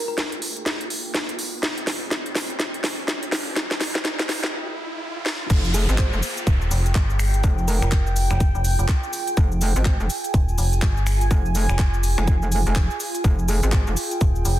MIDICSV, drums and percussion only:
0, 0, Header, 1, 2, 480
1, 0, Start_track
1, 0, Key_signature, -4, "minor"
1, 0, Tempo, 483871
1, 1617, Time_signature, 4, 2, 24, 8
1, 14478, End_track
2, 0, Start_track
2, 0, Title_t, "Drums"
2, 175, Note_on_c, 9, 38, 59
2, 175, Note_on_c, 9, 42, 73
2, 275, Note_off_c, 9, 38, 0
2, 275, Note_off_c, 9, 42, 0
2, 319, Note_on_c, 9, 42, 50
2, 416, Note_on_c, 9, 46, 107
2, 419, Note_off_c, 9, 42, 0
2, 515, Note_off_c, 9, 46, 0
2, 560, Note_on_c, 9, 42, 36
2, 655, Note_off_c, 9, 42, 0
2, 655, Note_on_c, 9, 38, 63
2, 655, Note_on_c, 9, 42, 77
2, 755, Note_off_c, 9, 38, 0
2, 755, Note_off_c, 9, 42, 0
2, 801, Note_on_c, 9, 42, 49
2, 896, Note_on_c, 9, 46, 104
2, 900, Note_off_c, 9, 42, 0
2, 995, Note_off_c, 9, 46, 0
2, 1136, Note_on_c, 9, 38, 65
2, 1136, Note_on_c, 9, 42, 71
2, 1235, Note_off_c, 9, 38, 0
2, 1235, Note_off_c, 9, 42, 0
2, 1280, Note_on_c, 9, 42, 52
2, 1375, Note_on_c, 9, 46, 104
2, 1379, Note_off_c, 9, 42, 0
2, 1475, Note_off_c, 9, 46, 0
2, 1616, Note_on_c, 9, 38, 73
2, 1616, Note_on_c, 9, 42, 76
2, 1715, Note_off_c, 9, 38, 0
2, 1715, Note_off_c, 9, 42, 0
2, 1762, Note_on_c, 9, 42, 49
2, 1855, Note_on_c, 9, 38, 73
2, 1855, Note_on_c, 9, 46, 112
2, 1861, Note_off_c, 9, 42, 0
2, 1955, Note_off_c, 9, 38, 0
2, 1955, Note_off_c, 9, 46, 0
2, 2096, Note_on_c, 9, 38, 76
2, 2096, Note_on_c, 9, 42, 77
2, 2196, Note_off_c, 9, 38, 0
2, 2196, Note_off_c, 9, 42, 0
2, 2241, Note_on_c, 9, 42, 50
2, 2336, Note_on_c, 9, 38, 81
2, 2336, Note_on_c, 9, 46, 109
2, 2340, Note_off_c, 9, 42, 0
2, 2435, Note_off_c, 9, 38, 0
2, 2435, Note_off_c, 9, 46, 0
2, 2480, Note_on_c, 9, 42, 36
2, 2575, Note_off_c, 9, 42, 0
2, 2575, Note_on_c, 9, 38, 78
2, 2575, Note_on_c, 9, 42, 74
2, 2675, Note_off_c, 9, 38, 0
2, 2675, Note_off_c, 9, 42, 0
2, 2720, Note_on_c, 9, 42, 49
2, 2815, Note_on_c, 9, 38, 83
2, 2815, Note_on_c, 9, 46, 107
2, 2819, Note_off_c, 9, 42, 0
2, 2914, Note_off_c, 9, 38, 0
2, 2914, Note_off_c, 9, 46, 0
2, 3056, Note_on_c, 9, 38, 82
2, 3056, Note_on_c, 9, 42, 76
2, 3155, Note_off_c, 9, 38, 0
2, 3155, Note_off_c, 9, 42, 0
2, 3201, Note_on_c, 9, 42, 52
2, 3296, Note_on_c, 9, 38, 89
2, 3296, Note_on_c, 9, 46, 107
2, 3300, Note_off_c, 9, 42, 0
2, 3395, Note_off_c, 9, 38, 0
2, 3395, Note_off_c, 9, 46, 0
2, 3536, Note_on_c, 9, 38, 90
2, 3536, Note_on_c, 9, 42, 78
2, 3635, Note_off_c, 9, 38, 0
2, 3635, Note_off_c, 9, 42, 0
2, 3680, Note_on_c, 9, 38, 81
2, 3680, Note_on_c, 9, 42, 49
2, 3776, Note_off_c, 9, 38, 0
2, 3776, Note_on_c, 9, 38, 93
2, 3776, Note_on_c, 9, 46, 112
2, 3779, Note_off_c, 9, 42, 0
2, 3875, Note_off_c, 9, 38, 0
2, 3875, Note_off_c, 9, 46, 0
2, 3921, Note_on_c, 9, 38, 87
2, 4016, Note_off_c, 9, 38, 0
2, 4016, Note_on_c, 9, 38, 98
2, 4016, Note_on_c, 9, 42, 74
2, 4115, Note_off_c, 9, 38, 0
2, 4115, Note_off_c, 9, 42, 0
2, 4161, Note_on_c, 9, 38, 87
2, 4161, Note_on_c, 9, 42, 52
2, 4256, Note_off_c, 9, 38, 0
2, 4256, Note_on_c, 9, 38, 93
2, 4256, Note_on_c, 9, 46, 109
2, 4260, Note_off_c, 9, 42, 0
2, 4355, Note_off_c, 9, 38, 0
2, 4355, Note_off_c, 9, 46, 0
2, 4401, Note_on_c, 9, 38, 87
2, 4500, Note_off_c, 9, 38, 0
2, 5216, Note_on_c, 9, 38, 93
2, 5315, Note_off_c, 9, 38, 0
2, 5456, Note_on_c, 9, 36, 112
2, 5456, Note_on_c, 9, 42, 73
2, 5456, Note_on_c, 9, 49, 111
2, 5456, Note_on_c, 9, 69, 46
2, 5555, Note_off_c, 9, 42, 0
2, 5555, Note_off_c, 9, 49, 0
2, 5555, Note_off_c, 9, 69, 0
2, 5556, Note_off_c, 9, 36, 0
2, 5602, Note_on_c, 9, 69, 22
2, 5697, Note_off_c, 9, 69, 0
2, 5697, Note_on_c, 9, 46, 108
2, 5697, Note_on_c, 9, 69, 79
2, 5796, Note_off_c, 9, 46, 0
2, 5796, Note_off_c, 9, 69, 0
2, 5842, Note_on_c, 9, 42, 57
2, 5842, Note_on_c, 9, 69, 35
2, 5933, Note_on_c, 9, 39, 124
2, 5937, Note_off_c, 9, 42, 0
2, 5937, Note_off_c, 9, 69, 0
2, 5937, Note_on_c, 9, 36, 118
2, 5937, Note_on_c, 9, 42, 69
2, 5937, Note_on_c, 9, 69, 44
2, 6032, Note_off_c, 9, 39, 0
2, 6036, Note_off_c, 9, 36, 0
2, 6036, Note_off_c, 9, 42, 0
2, 6036, Note_off_c, 9, 69, 0
2, 6082, Note_on_c, 9, 69, 23
2, 6177, Note_off_c, 9, 69, 0
2, 6177, Note_on_c, 9, 46, 106
2, 6177, Note_on_c, 9, 69, 76
2, 6276, Note_off_c, 9, 46, 0
2, 6276, Note_off_c, 9, 69, 0
2, 6321, Note_on_c, 9, 42, 53
2, 6322, Note_on_c, 9, 69, 33
2, 6417, Note_on_c, 9, 36, 115
2, 6418, Note_off_c, 9, 42, 0
2, 6418, Note_off_c, 9, 69, 0
2, 6418, Note_on_c, 9, 42, 68
2, 6418, Note_on_c, 9, 69, 43
2, 6516, Note_off_c, 9, 36, 0
2, 6517, Note_off_c, 9, 42, 0
2, 6517, Note_off_c, 9, 69, 0
2, 6562, Note_on_c, 9, 69, 23
2, 6658, Note_off_c, 9, 69, 0
2, 6658, Note_on_c, 9, 46, 101
2, 6658, Note_on_c, 9, 69, 77
2, 6757, Note_off_c, 9, 46, 0
2, 6757, Note_off_c, 9, 69, 0
2, 6803, Note_on_c, 9, 42, 55
2, 6803, Note_on_c, 9, 69, 32
2, 6895, Note_on_c, 9, 39, 124
2, 6897, Note_on_c, 9, 36, 120
2, 6899, Note_off_c, 9, 42, 0
2, 6899, Note_off_c, 9, 69, 0
2, 6899, Note_on_c, 9, 42, 66
2, 6899, Note_on_c, 9, 69, 44
2, 6994, Note_off_c, 9, 39, 0
2, 6996, Note_off_c, 9, 36, 0
2, 6998, Note_off_c, 9, 42, 0
2, 6998, Note_off_c, 9, 69, 0
2, 7043, Note_on_c, 9, 69, 22
2, 7137, Note_off_c, 9, 69, 0
2, 7137, Note_on_c, 9, 26, 61
2, 7137, Note_on_c, 9, 46, 99
2, 7137, Note_on_c, 9, 69, 78
2, 7236, Note_off_c, 9, 26, 0
2, 7236, Note_off_c, 9, 46, 0
2, 7236, Note_off_c, 9, 69, 0
2, 7281, Note_on_c, 9, 42, 66
2, 7281, Note_on_c, 9, 69, 34
2, 7376, Note_off_c, 9, 42, 0
2, 7376, Note_on_c, 9, 42, 70
2, 7377, Note_off_c, 9, 69, 0
2, 7377, Note_on_c, 9, 36, 122
2, 7377, Note_on_c, 9, 69, 44
2, 7476, Note_off_c, 9, 36, 0
2, 7476, Note_off_c, 9, 42, 0
2, 7476, Note_off_c, 9, 69, 0
2, 7522, Note_on_c, 9, 69, 21
2, 7617, Note_on_c, 9, 46, 106
2, 7618, Note_off_c, 9, 69, 0
2, 7618, Note_on_c, 9, 69, 78
2, 7717, Note_off_c, 9, 46, 0
2, 7717, Note_off_c, 9, 69, 0
2, 7762, Note_on_c, 9, 26, 59
2, 7762, Note_on_c, 9, 69, 34
2, 7853, Note_on_c, 9, 39, 127
2, 7857, Note_off_c, 9, 69, 0
2, 7857, Note_on_c, 9, 36, 121
2, 7857, Note_on_c, 9, 42, 70
2, 7857, Note_on_c, 9, 69, 46
2, 7861, Note_off_c, 9, 26, 0
2, 7953, Note_off_c, 9, 39, 0
2, 7956, Note_off_c, 9, 36, 0
2, 7956, Note_off_c, 9, 42, 0
2, 7956, Note_off_c, 9, 69, 0
2, 8002, Note_on_c, 9, 69, 23
2, 8096, Note_off_c, 9, 69, 0
2, 8096, Note_on_c, 9, 46, 109
2, 8096, Note_on_c, 9, 69, 79
2, 8195, Note_off_c, 9, 46, 0
2, 8196, Note_off_c, 9, 69, 0
2, 8240, Note_on_c, 9, 26, 61
2, 8240, Note_on_c, 9, 69, 33
2, 8336, Note_off_c, 9, 69, 0
2, 8336, Note_on_c, 9, 42, 69
2, 8336, Note_on_c, 9, 69, 42
2, 8337, Note_on_c, 9, 36, 127
2, 8339, Note_off_c, 9, 26, 0
2, 8435, Note_off_c, 9, 42, 0
2, 8436, Note_off_c, 9, 36, 0
2, 8436, Note_off_c, 9, 69, 0
2, 8482, Note_on_c, 9, 69, 21
2, 8576, Note_on_c, 9, 46, 109
2, 8577, Note_off_c, 9, 69, 0
2, 8577, Note_on_c, 9, 69, 74
2, 8675, Note_off_c, 9, 46, 0
2, 8676, Note_off_c, 9, 69, 0
2, 8721, Note_on_c, 9, 42, 53
2, 8722, Note_on_c, 9, 69, 32
2, 8813, Note_on_c, 9, 39, 121
2, 8816, Note_off_c, 9, 42, 0
2, 8816, Note_on_c, 9, 42, 63
2, 8817, Note_off_c, 9, 69, 0
2, 8817, Note_on_c, 9, 36, 116
2, 8817, Note_on_c, 9, 69, 45
2, 8912, Note_off_c, 9, 39, 0
2, 8916, Note_off_c, 9, 36, 0
2, 8916, Note_off_c, 9, 42, 0
2, 8916, Note_off_c, 9, 69, 0
2, 8961, Note_on_c, 9, 69, 22
2, 9056, Note_off_c, 9, 69, 0
2, 9056, Note_on_c, 9, 46, 114
2, 9056, Note_on_c, 9, 69, 76
2, 9155, Note_off_c, 9, 46, 0
2, 9156, Note_off_c, 9, 69, 0
2, 9200, Note_on_c, 9, 42, 67
2, 9200, Note_on_c, 9, 69, 33
2, 9295, Note_off_c, 9, 42, 0
2, 9295, Note_on_c, 9, 42, 67
2, 9296, Note_off_c, 9, 69, 0
2, 9296, Note_on_c, 9, 69, 44
2, 9297, Note_on_c, 9, 36, 125
2, 9395, Note_off_c, 9, 42, 0
2, 9395, Note_off_c, 9, 69, 0
2, 9396, Note_off_c, 9, 36, 0
2, 9441, Note_on_c, 9, 69, 20
2, 9536, Note_off_c, 9, 69, 0
2, 9536, Note_on_c, 9, 46, 112
2, 9536, Note_on_c, 9, 69, 75
2, 9635, Note_off_c, 9, 46, 0
2, 9636, Note_off_c, 9, 69, 0
2, 9681, Note_on_c, 9, 42, 52
2, 9681, Note_on_c, 9, 69, 32
2, 9773, Note_on_c, 9, 39, 127
2, 9776, Note_off_c, 9, 42, 0
2, 9776, Note_on_c, 9, 42, 63
2, 9777, Note_off_c, 9, 69, 0
2, 9777, Note_on_c, 9, 36, 127
2, 9777, Note_on_c, 9, 69, 43
2, 9872, Note_off_c, 9, 39, 0
2, 9876, Note_off_c, 9, 36, 0
2, 9876, Note_off_c, 9, 42, 0
2, 9876, Note_off_c, 9, 69, 0
2, 9921, Note_on_c, 9, 69, 21
2, 10017, Note_off_c, 9, 69, 0
2, 10017, Note_on_c, 9, 46, 112
2, 10017, Note_on_c, 9, 69, 76
2, 10116, Note_off_c, 9, 46, 0
2, 10116, Note_off_c, 9, 69, 0
2, 10161, Note_on_c, 9, 42, 52
2, 10161, Note_on_c, 9, 69, 31
2, 10257, Note_off_c, 9, 42, 0
2, 10257, Note_off_c, 9, 69, 0
2, 10257, Note_on_c, 9, 36, 127
2, 10257, Note_on_c, 9, 42, 66
2, 10257, Note_on_c, 9, 69, 42
2, 10356, Note_off_c, 9, 36, 0
2, 10356, Note_off_c, 9, 42, 0
2, 10356, Note_off_c, 9, 69, 0
2, 10402, Note_on_c, 9, 69, 21
2, 10497, Note_off_c, 9, 69, 0
2, 10497, Note_on_c, 9, 46, 108
2, 10497, Note_on_c, 9, 69, 73
2, 10596, Note_off_c, 9, 46, 0
2, 10596, Note_off_c, 9, 69, 0
2, 10641, Note_on_c, 9, 42, 52
2, 10642, Note_on_c, 9, 69, 32
2, 10734, Note_on_c, 9, 39, 116
2, 10737, Note_on_c, 9, 36, 123
2, 10738, Note_off_c, 9, 42, 0
2, 10738, Note_off_c, 9, 69, 0
2, 10738, Note_on_c, 9, 42, 63
2, 10738, Note_on_c, 9, 69, 41
2, 10833, Note_off_c, 9, 39, 0
2, 10836, Note_off_c, 9, 36, 0
2, 10837, Note_off_c, 9, 42, 0
2, 10837, Note_off_c, 9, 69, 0
2, 10882, Note_on_c, 9, 69, 22
2, 10977, Note_on_c, 9, 26, 61
2, 10977, Note_on_c, 9, 46, 109
2, 10978, Note_off_c, 9, 69, 0
2, 10978, Note_on_c, 9, 69, 77
2, 11077, Note_off_c, 9, 26, 0
2, 11077, Note_off_c, 9, 46, 0
2, 11077, Note_off_c, 9, 69, 0
2, 11122, Note_on_c, 9, 42, 63
2, 11122, Note_on_c, 9, 69, 33
2, 11217, Note_off_c, 9, 42, 0
2, 11217, Note_off_c, 9, 69, 0
2, 11217, Note_on_c, 9, 36, 120
2, 11217, Note_on_c, 9, 42, 65
2, 11217, Note_on_c, 9, 69, 44
2, 11316, Note_off_c, 9, 36, 0
2, 11316, Note_off_c, 9, 42, 0
2, 11317, Note_off_c, 9, 69, 0
2, 11363, Note_on_c, 9, 69, 23
2, 11457, Note_off_c, 9, 69, 0
2, 11457, Note_on_c, 9, 46, 110
2, 11457, Note_on_c, 9, 69, 76
2, 11556, Note_off_c, 9, 46, 0
2, 11556, Note_off_c, 9, 69, 0
2, 11601, Note_on_c, 9, 26, 65
2, 11601, Note_on_c, 9, 69, 33
2, 11693, Note_on_c, 9, 39, 119
2, 11697, Note_off_c, 9, 69, 0
2, 11697, Note_on_c, 9, 36, 127
2, 11697, Note_on_c, 9, 42, 63
2, 11697, Note_on_c, 9, 69, 44
2, 11700, Note_off_c, 9, 26, 0
2, 11792, Note_off_c, 9, 39, 0
2, 11796, Note_off_c, 9, 36, 0
2, 11796, Note_off_c, 9, 42, 0
2, 11796, Note_off_c, 9, 69, 0
2, 11842, Note_on_c, 9, 69, 23
2, 11937, Note_off_c, 9, 69, 0
2, 11937, Note_on_c, 9, 46, 109
2, 11937, Note_on_c, 9, 69, 74
2, 12036, Note_off_c, 9, 46, 0
2, 12037, Note_off_c, 9, 69, 0
2, 12082, Note_on_c, 9, 26, 62
2, 12083, Note_on_c, 9, 69, 32
2, 12177, Note_off_c, 9, 69, 0
2, 12177, Note_on_c, 9, 36, 126
2, 12177, Note_on_c, 9, 42, 64
2, 12177, Note_on_c, 9, 69, 43
2, 12182, Note_off_c, 9, 26, 0
2, 12276, Note_off_c, 9, 36, 0
2, 12276, Note_off_c, 9, 42, 0
2, 12276, Note_off_c, 9, 69, 0
2, 12323, Note_on_c, 9, 69, 21
2, 12418, Note_off_c, 9, 69, 0
2, 12418, Note_on_c, 9, 46, 108
2, 12418, Note_on_c, 9, 69, 78
2, 12517, Note_off_c, 9, 46, 0
2, 12517, Note_off_c, 9, 69, 0
2, 12562, Note_on_c, 9, 42, 50
2, 12562, Note_on_c, 9, 69, 31
2, 12654, Note_on_c, 9, 39, 115
2, 12657, Note_off_c, 9, 42, 0
2, 12657, Note_on_c, 9, 36, 119
2, 12657, Note_on_c, 9, 42, 62
2, 12658, Note_off_c, 9, 69, 0
2, 12658, Note_on_c, 9, 69, 41
2, 12753, Note_off_c, 9, 39, 0
2, 12756, Note_off_c, 9, 36, 0
2, 12757, Note_off_c, 9, 42, 0
2, 12757, Note_off_c, 9, 69, 0
2, 12801, Note_on_c, 9, 69, 22
2, 12896, Note_off_c, 9, 69, 0
2, 12896, Note_on_c, 9, 46, 108
2, 12896, Note_on_c, 9, 69, 73
2, 12995, Note_off_c, 9, 46, 0
2, 12995, Note_off_c, 9, 69, 0
2, 13040, Note_on_c, 9, 42, 61
2, 13040, Note_on_c, 9, 69, 34
2, 13137, Note_off_c, 9, 42, 0
2, 13137, Note_off_c, 9, 69, 0
2, 13137, Note_on_c, 9, 36, 118
2, 13137, Note_on_c, 9, 42, 62
2, 13137, Note_on_c, 9, 69, 47
2, 13236, Note_off_c, 9, 36, 0
2, 13236, Note_off_c, 9, 42, 0
2, 13236, Note_off_c, 9, 69, 0
2, 13281, Note_on_c, 9, 69, 22
2, 13376, Note_off_c, 9, 69, 0
2, 13376, Note_on_c, 9, 46, 108
2, 13376, Note_on_c, 9, 69, 82
2, 13475, Note_off_c, 9, 46, 0
2, 13475, Note_off_c, 9, 69, 0
2, 13519, Note_on_c, 9, 42, 51
2, 13519, Note_on_c, 9, 69, 35
2, 13611, Note_on_c, 9, 39, 112
2, 13615, Note_off_c, 9, 42, 0
2, 13615, Note_off_c, 9, 69, 0
2, 13615, Note_on_c, 9, 42, 63
2, 13615, Note_on_c, 9, 69, 45
2, 13617, Note_on_c, 9, 36, 119
2, 13711, Note_off_c, 9, 39, 0
2, 13714, Note_off_c, 9, 42, 0
2, 13714, Note_off_c, 9, 69, 0
2, 13716, Note_off_c, 9, 36, 0
2, 13759, Note_on_c, 9, 69, 24
2, 13855, Note_off_c, 9, 69, 0
2, 13855, Note_on_c, 9, 46, 109
2, 13855, Note_on_c, 9, 69, 75
2, 13954, Note_off_c, 9, 46, 0
2, 13955, Note_off_c, 9, 69, 0
2, 13999, Note_on_c, 9, 42, 50
2, 13999, Note_on_c, 9, 69, 35
2, 14095, Note_off_c, 9, 42, 0
2, 14095, Note_on_c, 9, 42, 61
2, 14096, Note_off_c, 9, 69, 0
2, 14096, Note_on_c, 9, 69, 43
2, 14097, Note_on_c, 9, 36, 122
2, 14195, Note_off_c, 9, 42, 0
2, 14195, Note_off_c, 9, 69, 0
2, 14196, Note_off_c, 9, 36, 0
2, 14240, Note_on_c, 9, 69, 23
2, 14336, Note_off_c, 9, 69, 0
2, 14336, Note_on_c, 9, 46, 107
2, 14336, Note_on_c, 9, 69, 76
2, 14435, Note_off_c, 9, 46, 0
2, 14435, Note_off_c, 9, 69, 0
2, 14478, End_track
0, 0, End_of_file